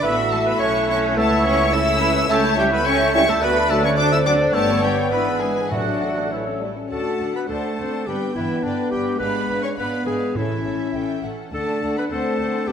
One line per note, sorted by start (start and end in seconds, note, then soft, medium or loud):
0.02 0.57 A1 medium
0.02 1.18 A3 medium
0.02 2.26 A3 medium
0.02 0.11 B3 medium
0.02 2.26 E4 medium
0.02 0.57 F#4 medium
0.02 1.70 A4 medium
0.02 0.16 B4 medium
0.02 1.13 E5 medium
0.02 0.60 E5 medium
0.02 0.32 B5 medium
0.02 0.56 E6 medium
0.32 0.37 A3 medium
0.32 0.38 A4 medium
0.32 0.46 A5 medium
0.46 0.60 B3 medium
0.46 0.52 B4 medium
0.46 0.61 B5 medium
0.59 1.17 B1 medium
0.59 0.87 C#4 medium
0.59 1.16 E4 medium
0.59 0.72 C#5 medium
0.59 1.17 C#5 medium
0.59 0.89 C#6 medium
0.59 1.17 F#6 medium
0.88 1.16 C#4 medium
0.88 1.19 C#5 medium
0.88 0.98 C#6 medium
1.17 2.29 C#2 medium
1.17 1.45 A3 medium
1.17 1.74 B3 medium
1.17 1.72 E4 medium
1.17 1.45 A4 medium
1.17 1.73 C#5 medium
1.17 1.75 E5 medium
1.17 1.46 A5 medium
1.17 1.72 E6 medium
1.45 1.73 C#4 medium
1.45 1.75 C#5 medium
1.45 1.73 C#6 loud
1.72 2.28 A3 medium
1.72 2.28 C#4 medium
1.72 2.28 E4 medium
1.72 2.28 A4 medium
1.72 2.02 A4 medium
1.72 2.29 C#5 medium
1.72 2.30 E5 medium
1.72 2.28 E6 medium
1.72 2.30 E6 loud
2.02 2.30 B4 medium
2.28 3.38 C#2 medium
2.28 3.93 A3 medium
2.28 2.57 A3 medium
2.28 2.42 C#4 medium
2.28 2.42 G4 medium
2.28 2.43 A4 medium
2.28 2.84 C#5 medium
2.28 3.43 E5 medium
2.28 2.58 A5 loud
2.28 3.38 G6 medium
2.43 2.57 E4 medium
2.43 2.58 A4 medium
2.57 2.67 G3 medium
2.57 2.63 G3 medium
2.57 2.71 C#4 medium
2.57 2.67 E4 medium
2.57 2.72 G4 medium
2.57 2.64 G5 medium
2.71 2.85 B3 medium
2.71 2.85 E4 medium
2.71 2.86 A4 medium
2.71 2.87 B4 medium
2.71 2.87 B5 loud
2.85 3.13 C#4 medium
2.85 2.98 C#4 medium
2.85 2.98 G4 medium
2.85 3.41 A4 medium
2.85 3.13 C#5 medium
2.85 3.13 C#6 loud
3.00 3.14 E4 medium
3.00 3.14 A4 medium
3.14 3.24 G3 medium
3.14 3.28 C#4 medium
3.14 3.20 C#4 medium
3.14 3.24 E4 medium
3.14 3.28 G4 medium
3.14 3.30 C#5 medium
3.14 3.28 C#6 loud
3.28 3.34 A3 medium
3.28 3.42 E4 medium
3.28 3.42 A4 medium
3.28 3.43 A5 medium
3.41 4.55 D2 medium
3.41 3.55 A3 medium
3.41 3.50 B3 medium
3.41 3.55 F#4 medium
3.41 3.98 B4 medium
3.41 3.71 B4 medium
3.41 5.54 D5 medium
3.41 3.70 B5 loud
3.41 4.54 F#6 medium
3.56 3.70 D4 medium
3.56 3.70 A4 medium
3.69 3.80 F#3 medium
3.69 3.83 A3 medium
3.69 3.84 A3 medium
3.69 3.80 D4 medium
3.69 3.84 F#4 medium
3.69 3.84 A4 medium
3.69 3.84 A5 medium
3.83 3.98 C#4 medium
3.83 3.97 D4 medium
3.83 3.97 A4 medium
3.83 3.97 C#5 medium
3.83 3.90 C#6 medium
3.97 4.55 C4 medium
3.97 4.11 D4 medium
3.97 4.12 D4 medium
3.97 4.11 F#4 medium
3.97 4.53 A4 medium
3.97 4.04 D5 medium
3.97 4.11 D6 loud
4.12 4.26 C4 medium
4.12 4.18 E4 medium
4.12 4.26 A4 medium
4.12 4.18 E5 medium
4.12 4.18 E6 medium
4.25 4.35 F#3 medium
4.25 4.36 C4 medium
4.25 4.40 D4 medium
4.25 4.54 D4 medium
4.25 4.40 F#4 medium
4.25 4.55 D5 medium
4.25 4.34 D6 medium
4.41 4.55 C4 medium
4.41 4.55 A4 medium
4.54 5.11 G1 medium
4.54 5.08 G3 medium
4.54 4.83 A3 medium
4.54 5.70 B3 medium
4.54 5.08 B3 medium
4.54 4.68 D4 medium
4.54 4.68 G4 medium
4.54 4.83 A4 medium
4.54 5.11 C#5 medium
4.54 4.82 A5 loud
4.54 5.12 G6 medium
4.70 4.83 B3 medium
4.70 4.84 B4 medium
4.82 4.91 G3 medium
4.82 4.98 D4 medium
4.82 4.96 G4 medium
4.82 4.98 G4 medium
4.82 5.11 G5 medium
4.98 5.12 B3 soft
4.98 5.12 B4 soft
5.11 5.71 G#1 medium
5.11 5.71 E3 medium
5.11 5.41 B3 medium
5.11 5.26 B3 soft
5.11 5.69 D4 medium
5.11 5.26 E4 soft
5.11 5.41 B4 medium
5.11 5.71 B4 medium
5.11 5.40 B5 medium
5.11 5.44 E6 medium
5.27 5.41 D4 soft
5.27 5.41 G#4 soft
5.40 5.71 G#3 medium
5.40 5.57 B3 soft
5.40 5.57 E4 soft
5.40 5.70 G#4 medium
5.40 5.71 G#5 medium
5.58 5.72 D4 soft
5.58 5.72 G#4 soft
5.70 6.70 A1 medium
5.70 6.27 A2 medium
5.70 6.30 F#3 soft
5.70 6.29 F#3 medium
5.70 6.58 A3 soft
5.70 5.86 A3 soft
5.70 6.29 D4 soft
5.70 6.29 F#4 medium
5.70 5.86 F#4 soft
5.70 6.61 A4 medium
5.70 6.33 D5 soft
5.70 6.30 F#5 medium
5.70 6.29 F#6 soft
5.88 6.02 D4 soft
5.88 6.02 A4 soft
6.03 6.17 A3 soft
6.03 6.17 F#4 soft
6.18 6.32 D4 soft
6.18 6.32 A4 soft
6.29 6.43 E3 medium
6.29 6.45 A3 soft
6.29 6.45 E4 soft
6.29 6.61 C#5 soft
6.29 6.61 E6 soft
6.46 6.61 C#4 soft
6.46 6.61 A4 soft
6.58 6.72 G3 medium
6.58 6.76 A3 soft
6.58 6.76 E4 soft
6.77 6.91 C#4 soft
6.77 6.91 A4 soft
6.90 6.99 D2 soft
6.90 7.31 A3 soft
6.90 7.18 D4 soft
6.90 7.45 F#4 soft
6.90 7.38 A4 medium
6.90 7.18 A4 soft
6.90 7.18 F#5 soft
6.90 7.32 A5 medium
7.19 7.28 D2 soft
7.19 7.48 D4 soft
7.19 7.48 A4 soft
7.19 7.47 F#5 soft
7.34 7.48 B3 soft
7.34 7.48 B4 medium
7.34 7.40 B5 soft
7.48 7.57 D2 soft
7.48 8.06 A3 soft
7.48 7.62 D4 soft
7.48 7.76 D4 soft
7.48 8.09 A4 medium
7.48 7.76 C5 soft
7.48 7.77 F#5 soft
7.48 8.06 A5 soft
7.78 7.86 D2 soft
7.78 8.06 C4 soft
7.78 8.06 D4 soft
7.78 8.06 C5 soft
7.78 8.06 F#5 soft
8.07 8.16 G1 soft
8.07 8.36 G3 soft
8.07 9.18 B3 soft
8.07 8.34 D4 soft
8.07 8.34 G4 medium
8.07 8.34 B4 soft
8.07 8.35 G5 soft
8.07 8.36 G5 soft
8.35 8.44 G1 soft
8.35 8.63 E3 soft
8.35 8.63 D4 soft
8.35 8.65 E4 medium
8.35 8.63 B4 soft
8.35 8.65 E5 medium
8.35 8.63 G5 soft
8.63 8.73 G1 soft
8.63 8.91 D3 soft
8.63 8.92 D4 soft
8.63 8.91 D4 soft
8.63 8.91 B4 soft
8.63 8.91 D5 soft
8.63 8.91 G5 soft
8.91 9.00 G1 soft
8.91 9.20 G3 medium
8.91 9.20 D4 soft
8.91 9.18 G4 medium
8.91 9.19 B4 soft
8.91 9.00 G5 medium
8.91 9.20 G5 soft
9.19 9.28 G#1 medium
9.19 9.77 G#3 soft
9.19 9.63 B3 medium
9.19 9.48 D4 medium
9.19 9.62 B4 medium
9.19 9.48 B4 medium
9.19 9.48 F5 soft
9.19 9.62 B5 medium
9.49 9.57 G#1 medium
9.49 9.77 D4 soft
9.49 9.77 B4 soft
9.49 9.77 F5 soft
9.63 9.69 C#4 soft
9.63 9.71 C#5 medium
9.63 9.68 C#6 medium
9.77 9.86 G#1 medium
9.77 10.06 B3 medium
9.77 10.35 B3 soft
9.77 10.06 D4 soft
9.77 10.06 B4 medium
9.77 10.06 B4 soft
9.77 10.05 F5 soft
9.77 10.06 B5 medium
10.06 10.15 G#1 soft
10.06 10.36 G#3 medium
10.06 10.36 D4 soft
10.06 10.38 G#4 medium
10.06 10.35 B4 soft
10.06 10.35 F5 soft
10.06 10.14 G#5 medium
10.35 10.43 A1 soft
10.35 11.19 A2 soft
10.35 11.22 E3 soft
10.35 10.64 C#4 soft
10.35 11.24 C#4 soft
10.35 11.24 E4 medium
10.35 10.64 A4 soft
10.35 11.22 E5 soft
10.35 10.64 E5 soft
10.65 10.73 A1 soft
10.65 10.94 C#4 soft
10.65 10.93 A4 soft
10.65 10.94 E5 soft
10.94 11.02 A1 soft
10.94 11.23 C#4 soft
10.94 11.23 A4 soft
10.94 11.21 G5 soft
11.23 11.31 A1 soft
11.23 11.53 C#4 soft
11.23 11.53 A4 soft
11.23 11.51 F#5 soft
11.51 11.60 D2 soft
11.51 11.94 A3 medium
11.51 12.07 D4 soft
11.51 11.82 D4 soft
11.51 11.94 A4 medium
11.51 11.82 A4 soft
11.51 11.81 F#5 soft
11.51 11.94 A5 medium
11.82 11.90 D2 soft
11.82 12.11 D4 soft
11.82 12.11 A4 soft
11.82 12.10 F#5 soft
11.96 12.11 B3 soft
11.96 12.05 B4 medium
11.96 12.03 B5 soft
12.10 12.19 D2 soft
12.10 12.69 A3 medium
12.10 12.68 C4 soft
12.10 12.39 D4 soft
12.10 12.70 A4 medium
12.10 12.40 C5 soft
12.10 12.39 F#5 soft
12.10 12.67 A5 medium
12.39 12.47 D2 soft
12.39 12.68 D4 soft
12.39 12.68 C5 soft
12.39 12.68 F#5 soft
12.67 12.72 G1 soft
12.67 12.72 G3 medium
12.67 12.72 B3 medium
12.67 12.72 D4 soft
12.67 12.72 G4 medium
12.67 12.72 B4 soft
12.67 12.72 G5 medium
12.67 12.72 G5 soft